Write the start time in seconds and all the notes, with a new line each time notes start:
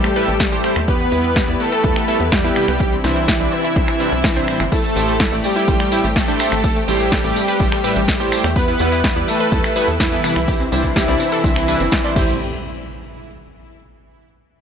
Already playing: G3 A3 C4 G4 A4, downlifter
0.04 A3, finger snap
0.16 A2 A3 E4 G4 B4 E5, open hi-hat
0.28 A1 A3, closed hi-hat
0.40 A3, kick, snare, closed hi-hat
0.52 A2 A3 E4 G4 C5
0.64 A3 E4 G4 C5, finger snap, open hi-hat
0.76 E2 A3, finger snap, closed hi-hat
0.88 E3 B3 E4 G4 B4, kick, closed hi-hat
1.00 B3
1.12 E2 G3 B3 E4 B4, open hi-hat
1.24 B3, closed hi-hat
1.36 G4, kick, snare, closed hi-hat
1.48 E2 G3 B3 E4 D5
1.60 A3 B3 A4, open hi-hat
1.72 A4, closed hi-hat
1.84 E2 G3 B3 E4 B4, kick, closed hi-hat
1.96 B3, finger snap
2.08 G3 B3 E4 A4 E5, open hi-hat
2.20 E2 B3, closed hi-hat
2.32 G3 B3 G4, kick, snare, closed hi-hat
2.44 G3 B3 E4 B4
2.56 C3 G3 B3 E4 B4, finger snap, open hi-hat
2.68 C2 B3, finger snap, closed hi-hat
2.80 C3 C4 D4 G4, kick, closed hi-hat
2.92 C4
3.04 C2 C3 E3 G3 C4 D4 E4 C5, snare, open hi-hat
3.16 C4, closed hi-hat
3.28 G4, kick, snare, closed hi-hat
3.40 C2 C3 G3 C4 D4 E4 D5
3.52 C4, open hi-hat
3.64 E4, closed hi-hat
3.76 C2 C3 G3 C4 D4 E4 C5, kick, closed hi-hat
3.88 C4, finger snap
4.00 C3 G3 C4 D4 E4 E5, open hi-hat
4.12 C2 C4, closed hi-hat
4.24 C4, kick, snare, closed hi-hat
4.36 C3 G3 C4 D4 E4 C5
4.48 A2 G3 C4 D4 E4 C5, finger snap, open hi-hat
4.60 G1 C4, finger snap, closed hi-hat
4.72 A3 E4 G4 A4, kick, closed hi-hat, tambourine
4.84 A3, tambourine
4.96 A1 A2 A3 E4 G4 C5, open hi-hat, tambourine
5.08 A3, closed hi-hat, tambourine
5.20 E4, kick, snare, closed hi-hat, tambourine
5.31 A1 A2 A3 E4 G4 D5, tambourine
5.44 G3 A3 G4, open hi-hat, tambourine
5.56 E4, closed hi-hat, tambourine
5.68 A1 A2 A3 E4 G4 C5, kick, closed hi-hat, tambourine
5.79 A3, finger snap, tambourine
5.92 A2 A3 E4 G4 E5, open hi-hat, tambourine
6.04 A1 A3, closed hi-hat, tambourine
6.16 A3 A4, kick, snare, closed hi-hat, tambourine
6.28 A2 A3 D4 E4 G4 C5, tambourine
6.39 A2 A3 E4 G4 C5, finger snap, open hi-hat, tambourine
6.51 A1 A3, finger snap, closed hi-hat, tambourine
6.63 A4, kick, closed hi-hat, tambourine
6.76 A3, tambourine
6.88 A1 A2 G3 A3 E4 G4 C5, open hi-hat, tambourine
7.00 A3, closed hi-hat, tambourine
7.12 A4, kick, snare, closed hi-hat, tambourine
7.24 A1 A2 A3 E4 G4 D5, tambourine
7.36 A3, open hi-hat, tambourine
7.48 B4, closed hi-hat, tambourine
7.60 A1 A2 A3 E4 G4 C5, kick, closed hi-hat, tambourine
7.72 A3, finger snap, tambourine
7.84 A2 A3 E4 G4 B4 E5, open hi-hat, tambourine
7.96 A1 A3, closed hi-hat, tambourine
8.08 A3, kick, snare, closed hi-hat, tambourine
8.20 A2 A3 E4 G4 C5, tambourine
8.32 A3 E4 G4 C5, finger snap, open hi-hat, tambourine
8.44 E2 A3, finger snap, closed hi-hat
8.56 E3 B3 E4 G4 B4, kick, closed hi-hat, tambourine
8.68 E4, tambourine
8.79 E2 G3 B3 E4 B4, open hi-hat, tambourine
8.92 E4, closed hi-hat, tambourine
9.04 B4, kick, snare, closed hi-hat, tambourine
9.16 E2 G3 B3 E4 D5, tambourine
9.28 A3 E4 A4, open hi-hat, tambourine
9.40 B4, closed hi-hat, tambourine
9.52 E2 G3 B3 E4 B4, kick, closed hi-hat, tambourine
9.64 E4, finger snap, tambourine
9.76 G3 B3 E4 B4 E5, open hi-hat, tambourine
9.88 E2 E4, closed hi-hat, tambourine
10.00 E3 E4, kick, snare, closed hi-hat, tambourine
10.12 G3 B3 E4 A4 B4, tambourine
10.24 C3 G3 B3 E4 B4, finger snap, open hi-hat, tambourine
10.36 C2 E4, finger snap, closed hi-hat, tambourine
10.48 C3 C4 D4 G4, kick, closed hi-hat, tambourine
10.60 C4, tambourine
10.72 C2 C3 E3 G3 C4 D4 E4 C5, open hi-hat, tambourine
10.84 C4, kick, closed hi-hat, tambourine
10.96 G4, kick, snare, closed hi-hat, tambourine
11.08 C2 C3 G3 C4 D4 E4 D5, tambourine
11.20 C4, open hi-hat, tambourine
11.31 A4, closed hi-hat, tambourine
11.44 C2 C3 G3 C4 D4 E4 C5, kick, closed hi-hat, tambourine
11.56 C4, finger snap, tambourine
11.68 C3 G3 D4 E4 B4 E5, open hi-hat, tambourine
11.80 G1 C4, closed hi-hat, tambourine
11.92 C4, kick, snare, closed hi-hat, tambourine
12.04 C3 G3 D4 E4 C5 D5, tambourine
12.16 A1 A2 A3 C4 E4 G4 C5, kick, crash, tambourine, impact
12.28 tambourine